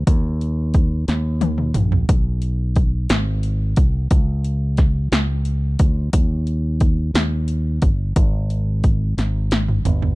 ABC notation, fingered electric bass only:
X:1
M:6/8
L:1/8
Q:3/8=59
K:Ebmix
V:1 name="Fingered electric bass" clef=bass
E,,3 E,,2 B,,, | _C,,3 A,,,2 =C,, | D,,3 D,,2 =D,, | E,,3 E,,2 G,,, |
A,,,3 A,,,2 G,,, |]